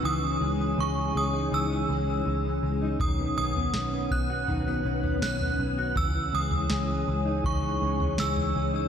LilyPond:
<<
  \new Staff \with { instrumentName = "Synth bell" } { \time 4/4 \key cis \dorian \tempo 4 = 81 dis'''4 cis'''8 dis'''8 e'''4. r8 | dis'''8 dis'''4 fis'''4. fis'''4 | e'''8 dis'''4. cis'''4 e'''8. r16 | }
  \new Staff \with { instrumentName = "Ambient pad" } { \time 4/4 \key cis \dorian << { <gis' cis'' gis''>1 | <b' cis'' fis''>1 | <gis' cis'' gis''>1 | } \\ { cis'1~ | cis'1 | cis'1 | } >> }
  \new Staff \with { instrumentName = "Clean electric guitar" } { \clef bass \time 4/4 \key cis \dorian e16 e16 gis16 e16 gis16 e16 gis16 dis'16 e16 e16 gis16 e16 gis16 e16 gis16 dis'16 | dis16 b16 cis'16 b16 cis'16 b16 cis'16 fis'16 dis16 b16 cis'16 b16 cis'16 b16 cis'16 fis'16 | e16 e16 gis16 e16 gis16 e16 gis16 dis'16 e16 e16 gis16 e16 gis16 e16 gis16 dis'16 | }
  \new Staff \with { instrumentName = "Picked electric bass" } { \clef bass \time 4/4 \key cis \dorian cis,8 cis,8 cis,8 cis,8 cis,8 cis,8 cis,8 cis,8 | b,,8 b,,8 b,,8 b,,8 b,,8 b,,8 b,,8 b,,8 | cis,8 cis,8 cis,8 cis,8 cis,8 cis,8 cis,8 cis,8 | }
  \new DrumStaff \with { instrumentName = "Drums" } \drummode { \time 4/4 r4 r4 r4 r4 | <bd tomfh>8. tomfh16 sn8 bd8 tomfh8. tomfh16 sn16 tomfh8. | <bd tomfh>8. tomfh16 sn4 <bd tomfh>8. tomfh16 sn16 tomfh8. | }
>>